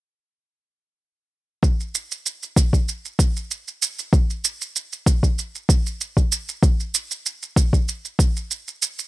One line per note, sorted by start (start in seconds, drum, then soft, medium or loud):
1.63 kick loud
1.63 shaker soft
1.80 shaker soft
1.95 shaker medium
2.12 shaker soft
2.26 shaker soft
2.43 shaker soft
2.56 kick medium
2.56 shaker medium
2.73 kick medium
2.73 shaker soft
2.88 shaker soft
3.05 shaker soft
3.19 kick medium
3.19 shaker medium
3.36 shaker soft
3.51 shaker soft
3.68 shaker soft
3.82 shaker medium
3.99 shaker soft
4.13 kick loud
4.13 shaker soft
4.30 shaker soft
4.45 shaker medium
4.61 shaker soft
4.76 shaker soft
4.93 shaker soft
5.06 kick medium
5.06 shaker medium
5.23 kick soft
5.23 shaker soft
5.39 shaker soft
5.55 shaker soft
5.69 kick loud
5.69 shaker medium
5.86 shaker soft
6.01 shaker soft
6.17 kick medium
6.17 shaker soft
6.32 shaker medium
6.49 shaker soft
6.63 kick loud
6.63 shaker soft
6.80 shaker soft
6.94 shaker medium
7.11 shaker soft
7.26 shaker soft
7.43 shaker soft
7.56 kick medium
7.56 shaker medium
7.73 kick medium
7.73 shaker soft
7.88 shaker soft
8.05 shaker soft
8.19 kick loud
8.19 shaker medium
8.37 shaker soft
8.51 shaker soft
8.68 shaker soft
8.82 shaker medium
8.99 shaker soft